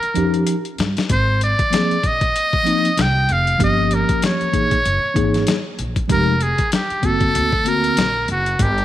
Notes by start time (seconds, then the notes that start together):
Already playing: A#4
0.03 muted upright bass stroke, closed hi-hat
0.14 F2 F3 C#4 D#4 G4, closed hi-hat
0.34 closed hi-hat
0.47 closed hi-hat
0.65 closed hi-hat
0.78 G2, snare, closed hi-hat
0.97 snare, closed hi-hat
1.09 G#1 C5, kick, closed hi-hat
1.41 D5, closed hi-hat
1.59 kick, closed hi-hat
1.70 F3 A#3 C4 G#4, snare, closed hi-hat
1.91 muted upright bass stroke, closed hi-hat
2.04 A#1 D#5, kick, closed hi-hat
2.21 kick, closed hi-hat
2.36 closed hi-hat
2.53 kick
2.64 F3 A#3 C4 D#4, closed hi-hat
2.85 closed hi-hat
2.97 C2 G5, snare, closed hi-hat
3.29 F1 F5, closed hi-hat
3.47 closed hi-hat
3.58 G1 F3 A#3 C#4 G4, kick, closed hi-hat
3.64 D#5
3.91 A#4, closed hi-hat
4.09 kick, closed hi-hat
4.22 C#5, snare, closed hi-hat
4.41 muted upright bass stroke, closed hi-hat
4.51 A#1 E3 A#3 D#4 G#4, kick, closed hi-hat
4.71 kick, closed hi-hat
4.85 F#1, closed hi-hat
5.04 muted upright bass stroke
5.14 G#1 E3 A#3 D#4 G#4, kick, closed hi-hat
5.34 snare, closed hi-hat
5.47 snare, closed hi-hat
5.79 A#1, closed hi-hat
5.96 kick, closed hi-hat
6.08 F1 F3 G#3 D#4 G4, kick, closed hi-hat
6.12 A#4
6.41 G#4, closed hi-hat
6.58 kick, closed hi-hat
6.72 G4, snare, closed hi-hat
6.90 muted upright bass stroke, closed hi-hat
7.02 G1 D3 A#3 C4 F#4 A4, kick, closed hi-hat
7.21 kick, closed hi-hat
7.35 D2, closed hi-hat
7.53 kick
7.64 D3 A#3 C4 F#4, closed hi-hat
7.68 A#4
7.84 closed hi-hat
7.97 A#1, snare, closed hi-hat
8.28 F#1 F#4, closed hi-hat
8.46 closed hi-hat
8.59 G1 G4, kick, closed hi-hat
8.78 closed hi-hat